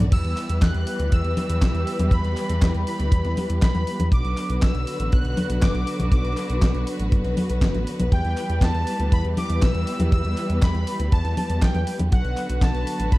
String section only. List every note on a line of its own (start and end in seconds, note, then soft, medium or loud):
0.00 4.08 B3 medium
0.12 4.08 E3 medium
0.12 4.08 G3 medium
0.12 4.08 G4 medium
0.12 4.08 B4 medium
4.12 8.08 D3 medium
4.12 8.08 F#3 medium
4.12 13.18 B3 medium
4.12 8.08 F#4 medium
4.12 12.08 B4 loud
8.12 12.08 E3 medium
8.12 12.08 G3 medium
8.12 12.08 G4 medium
12.12 13.18 D3 medium
12.12 13.18 F#3 medium
12.12 13.18 F#4 medium
12.12 13.18 B4 medium